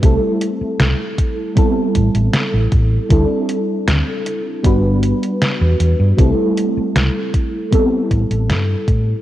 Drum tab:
HH |x-x-x-x-x-xxx-x-|x-x-x-x-x-xxx-x-|x-x-x-x-x-xxx-x-|
SD |----o-------o---|----o-------o---|----o-------o---|
BD |o-----o-o-o---o-|o-------o-------|o-----o-o-o---o-|